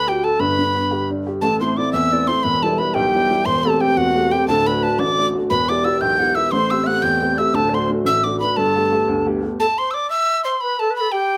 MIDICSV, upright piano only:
0, 0, Header, 1, 2, 480
1, 0, Start_track
1, 0, Key_signature, 1, "major"
1, 0, Tempo, 340329
1, 564, Time_signature, 6, 3, 24, 8
1, 16040, End_track
2, 0, Start_track
2, 0, Title_t, "Upright piano"
2, 0, Program_c, 0, 0
2, 0, Note_on_c, 0, 38, 64
2, 0, Note_on_c, 0, 50, 75
2, 105, Note_on_c, 0, 66, 63
2, 328, Note_off_c, 0, 66, 0
2, 334, Note_on_c, 0, 69, 55
2, 503, Note_off_c, 0, 38, 0
2, 516, Note_off_c, 0, 50, 0
2, 556, Note_on_c, 0, 43, 68
2, 557, Note_off_c, 0, 69, 0
2, 561, Note_on_c, 0, 31, 61
2, 826, Note_on_c, 0, 50, 57
2, 1049, Note_off_c, 0, 50, 0
2, 1053, Note_on_c, 0, 59, 55
2, 1276, Note_off_c, 0, 59, 0
2, 1285, Note_on_c, 0, 67, 60
2, 1541, Note_off_c, 0, 67, 0
2, 1554, Note_on_c, 0, 62, 51
2, 1772, Note_off_c, 0, 62, 0
2, 1786, Note_on_c, 0, 67, 56
2, 1946, Note_off_c, 0, 31, 0
2, 1957, Note_off_c, 0, 43, 0
2, 2002, Note_off_c, 0, 67, 0
2, 2003, Note_on_c, 0, 45, 68
2, 2004, Note_on_c, 0, 33, 55
2, 2267, Note_on_c, 0, 57, 51
2, 2270, Note_on_c, 0, 60, 52
2, 2276, Note_on_c, 0, 64, 62
2, 2475, Note_off_c, 0, 57, 0
2, 2481, Note_off_c, 0, 45, 0
2, 2482, Note_off_c, 0, 60, 0
2, 2487, Note_off_c, 0, 64, 0
2, 2497, Note_on_c, 0, 57, 47
2, 2503, Note_on_c, 0, 60, 41
2, 2508, Note_on_c, 0, 64, 57
2, 2733, Note_on_c, 0, 40, 71
2, 2890, Note_off_c, 0, 57, 0
2, 2894, Note_off_c, 0, 60, 0
2, 2897, Note_off_c, 0, 64, 0
2, 2988, Note_on_c, 0, 57, 51
2, 2993, Note_on_c, 0, 60, 48
2, 2999, Note_on_c, 0, 64, 63
2, 3189, Note_off_c, 0, 57, 0
2, 3196, Note_off_c, 0, 60, 0
2, 3199, Note_off_c, 0, 64, 0
2, 3206, Note_off_c, 0, 40, 0
2, 3210, Note_on_c, 0, 57, 51
2, 3217, Note_on_c, 0, 60, 43
2, 3221, Note_on_c, 0, 64, 56
2, 3387, Note_off_c, 0, 33, 0
2, 3395, Note_off_c, 0, 57, 0
2, 3399, Note_off_c, 0, 60, 0
2, 3401, Note_off_c, 0, 64, 0
2, 3449, Note_on_c, 0, 28, 61
2, 3451, Note_on_c, 0, 40, 66
2, 3707, Note_on_c, 0, 55, 52
2, 3712, Note_on_c, 0, 59, 46
2, 3720, Note_on_c, 0, 64, 66
2, 3914, Note_off_c, 0, 55, 0
2, 3919, Note_off_c, 0, 59, 0
2, 3925, Note_off_c, 0, 40, 0
2, 3926, Note_off_c, 0, 64, 0
2, 3935, Note_on_c, 0, 55, 46
2, 3940, Note_on_c, 0, 59, 48
2, 3947, Note_on_c, 0, 64, 52
2, 4168, Note_on_c, 0, 35, 75
2, 4329, Note_off_c, 0, 55, 0
2, 4332, Note_off_c, 0, 59, 0
2, 4336, Note_off_c, 0, 64, 0
2, 4425, Note_on_c, 0, 55, 49
2, 4427, Note_on_c, 0, 59, 48
2, 4432, Note_on_c, 0, 64, 57
2, 4626, Note_off_c, 0, 55, 0
2, 4632, Note_off_c, 0, 59, 0
2, 4639, Note_off_c, 0, 64, 0
2, 4643, Note_off_c, 0, 35, 0
2, 4648, Note_on_c, 0, 55, 51
2, 4653, Note_on_c, 0, 59, 44
2, 4660, Note_on_c, 0, 64, 63
2, 4830, Note_off_c, 0, 28, 0
2, 4833, Note_off_c, 0, 55, 0
2, 4836, Note_off_c, 0, 59, 0
2, 4841, Note_off_c, 0, 64, 0
2, 4873, Note_on_c, 0, 28, 67
2, 4875, Note_on_c, 0, 40, 71
2, 5136, Note_on_c, 0, 57, 61
2, 5141, Note_on_c, 0, 60, 52
2, 5150, Note_on_c, 0, 67, 57
2, 5336, Note_off_c, 0, 57, 0
2, 5343, Note_off_c, 0, 60, 0
2, 5349, Note_off_c, 0, 67, 0
2, 5356, Note_off_c, 0, 40, 0
2, 5357, Note_on_c, 0, 57, 56
2, 5364, Note_on_c, 0, 60, 54
2, 5370, Note_on_c, 0, 67, 62
2, 5594, Note_on_c, 0, 40, 62
2, 5758, Note_off_c, 0, 57, 0
2, 5762, Note_off_c, 0, 60, 0
2, 5766, Note_off_c, 0, 67, 0
2, 5854, Note_on_c, 0, 57, 53
2, 5861, Note_on_c, 0, 60, 42
2, 5868, Note_on_c, 0, 67, 57
2, 6062, Note_off_c, 0, 57, 0
2, 6066, Note_off_c, 0, 60, 0
2, 6070, Note_off_c, 0, 67, 0
2, 6076, Note_off_c, 0, 40, 0
2, 6083, Note_on_c, 0, 57, 56
2, 6087, Note_on_c, 0, 60, 54
2, 6091, Note_on_c, 0, 67, 61
2, 6262, Note_off_c, 0, 28, 0
2, 6270, Note_off_c, 0, 57, 0
2, 6273, Note_off_c, 0, 60, 0
2, 6275, Note_off_c, 0, 67, 0
2, 6321, Note_on_c, 0, 38, 77
2, 6322, Note_on_c, 0, 26, 71
2, 6574, Note_on_c, 0, 57, 51
2, 6585, Note_on_c, 0, 62, 42
2, 6585, Note_on_c, 0, 66, 65
2, 6791, Note_off_c, 0, 57, 0
2, 6796, Note_off_c, 0, 62, 0
2, 6798, Note_off_c, 0, 66, 0
2, 6800, Note_off_c, 0, 38, 0
2, 6812, Note_on_c, 0, 57, 47
2, 6817, Note_on_c, 0, 62, 44
2, 6819, Note_on_c, 0, 66, 50
2, 7037, Note_on_c, 0, 33, 66
2, 7207, Note_off_c, 0, 57, 0
2, 7211, Note_off_c, 0, 62, 0
2, 7212, Note_off_c, 0, 66, 0
2, 7300, Note_on_c, 0, 57, 49
2, 7307, Note_on_c, 0, 62, 47
2, 7310, Note_on_c, 0, 66, 48
2, 7507, Note_off_c, 0, 57, 0
2, 7514, Note_off_c, 0, 62, 0
2, 7518, Note_off_c, 0, 33, 0
2, 7522, Note_off_c, 0, 66, 0
2, 7528, Note_on_c, 0, 57, 51
2, 7535, Note_on_c, 0, 62, 45
2, 7544, Note_on_c, 0, 66, 55
2, 7707, Note_off_c, 0, 26, 0
2, 7714, Note_off_c, 0, 57, 0
2, 7718, Note_off_c, 0, 62, 0
2, 7723, Note_off_c, 0, 66, 0
2, 7764, Note_on_c, 0, 28, 63
2, 7768, Note_on_c, 0, 40, 77
2, 8022, Note_on_c, 0, 59, 49
2, 8027, Note_on_c, 0, 64, 49
2, 8034, Note_on_c, 0, 67, 58
2, 8223, Note_off_c, 0, 59, 0
2, 8227, Note_off_c, 0, 64, 0
2, 8234, Note_off_c, 0, 67, 0
2, 8244, Note_off_c, 0, 40, 0
2, 8244, Note_on_c, 0, 59, 50
2, 8248, Note_on_c, 0, 64, 47
2, 8255, Note_on_c, 0, 67, 58
2, 8482, Note_on_c, 0, 35, 69
2, 8643, Note_off_c, 0, 59, 0
2, 8646, Note_off_c, 0, 64, 0
2, 8650, Note_off_c, 0, 67, 0
2, 8735, Note_on_c, 0, 59, 50
2, 8743, Note_on_c, 0, 64, 51
2, 8747, Note_on_c, 0, 67, 62
2, 8947, Note_off_c, 0, 59, 0
2, 8955, Note_off_c, 0, 64, 0
2, 8959, Note_off_c, 0, 67, 0
2, 8961, Note_off_c, 0, 35, 0
2, 8968, Note_on_c, 0, 59, 50
2, 8977, Note_on_c, 0, 64, 47
2, 8980, Note_on_c, 0, 67, 50
2, 9149, Note_off_c, 0, 28, 0
2, 9154, Note_off_c, 0, 59, 0
2, 9159, Note_off_c, 0, 64, 0
2, 9162, Note_off_c, 0, 67, 0
2, 9200, Note_on_c, 0, 33, 67
2, 9200, Note_on_c, 0, 45, 66
2, 9460, Note_on_c, 0, 57, 49
2, 9466, Note_on_c, 0, 60, 52
2, 9469, Note_on_c, 0, 67, 59
2, 9662, Note_off_c, 0, 57, 0
2, 9671, Note_off_c, 0, 60, 0
2, 9677, Note_off_c, 0, 67, 0
2, 9680, Note_off_c, 0, 45, 0
2, 9683, Note_on_c, 0, 57, 56
2, 9692, Note_on_c, 0, 60, 54
2, 9699, Note_on_c, 0, 67, 62
2, 9920, Note_on_c, 0, 40, 71
2, 10083, Note_off_c, 0, 57, 0
2, 10088, Note_off_c, 0, 60, 0
2, 10092, Note_off_c, 0, 67, 0
2, 10175, Note_on_c, 0, 57, 50
2, 10183, Note_on_c, 0, 60, 50
2, 10186, Note_on_c, 0, 67, 51
2, 10386, Note_off_c, 0, 57, 0
2, 10393, Note_off_c, 0, 60, 0
2, 10396, Note_off_c, 0, 67, 0
2, 10401, Note_off_c, 0, 40, 0
2, 10407, Note_on_c, 0, 57, 58
2, 10414, Note_on_c, 0, 60, 47
2, 10417, Note_on_c, 0, 67, 62
2, 10588, Note_off_c, 0, 33, 0
2, 10594, Note_off_c, 0, 57, 0
2, 10598, Note_off_c, 0, 60, 0
2, 10600, Note_off_c, 0, 67, 0
2, 10631, Note_on_c, 0, 26, 65
2, 10631, Note_on_c, 0, 38, 72
2, 10896, Note_on_c, 0, 57, 52
2, 10905, Note_on_c, 0, 62, 50
2, 10909, Note_on_c, 0, 66, 63
2, 11101, Note_off_c, 0, 57, 0
2, 11103, Note_off_c, 0, 62, 0
2, 11110, Note_off_c, 0, 66, 0
2, 11117, Note_off_c, 0, 38, 0
2, 11122, Note_on_c, 0, 57, 60
2, 11124, Note_on_c, 0, 62, 45
2, 11131, Note_on_c, 0, 66, 52
2, 11354, Note_on_c, 0, 33, 68
2, 11523, Note_off_c, 0, 57, 0
2, 11524, Note_off_c, 0, 62, 0
2, 11528, Note_off_c, 0, 66, 0
2, 11622, Note_on_c, 0, 57, 51
2, 11629, Note_on_c, 0, 62, 54
2, 11636, Note_on_c, 0, 66, 66
2, 11831, Note_off_c, 0, 57, 0
2, 11838, Note_off_c, 0, 33, 0
2, 11838, Note_off_c, 0, 62, 0
2, 11842, Note_off_c, 0, 66, 0
2, 11852, Note_on_c, 0, 57, 45
2, 11859, Note_on_c, 0, 62, 54
2, 11864, Note_on_c, 0, 66, 51
2, 12024, Note_off_c, 0, 26, 0
2, 12038, Note_off_c, 0, 57, 0
2, 12042, Note_off_c, 0, 62, 0
2, 12045, Note_off_c, 0, 66, 0
2, 12085, Note_on_c, 0, 31, 57
2, 12085, Note_on_c, 0, 43, 70
2, 12347, Note_on_c, 0, 57, 50
2, 12350, Note_on_c, 0, 59, 47
2, 12356, Note_on_c, 0, 67, 53
2, 12551, Note_off_c, 0, 57, 0
2, 12561, Note_off_c, 0, 59, 0
2, 12564, Note_off_c, 0, 43, 0
2, 12564, Note_off_c, 0, 67, 0
2, 12572, Note_on_c, 0, 57, 55
2, 12582, Note_on_c, 0, 59, 46
2, 12585, Note_on_c, 0, 67, 56
2, 12802, Note_on_c, 0, 38, 77
2, 12970, Note_off_c, 0, 57, 0
2, 12975, Note_off_c, 0, 59, 0
2, 12977, Note_off_c, 0, 67, 0
2, 13060, Note_on_c, 0, 57, 53
2, 13062, Note_on_c, 0, 59, 43
2, 13071, Note_on_c, 0, 67, 56
2, 13266, Note_off_c, 0, 57, 0
2, 13269, Note_off_c, 0, 59, 0
2, 13276, Note_off_c, 0, 67, 0
2, 13283, Note_off_c, 0, 38, 0
2, 13287, Note_on_c, 0, 57, 49
2, 13290, Note_on_c, 0, 59, 42
2, 13298, Note_on_c, 0, 67, 49
2, 13471, Note_off_c, 0, 31, 0
2, 13475, Note_off_c, 0, 57, 0
2, 13477, Note_off_c, 0, 59, 0
2, 13481, Note_off_c, 0, 67, 0
2, 16040, End_track
0, 0, End_of_file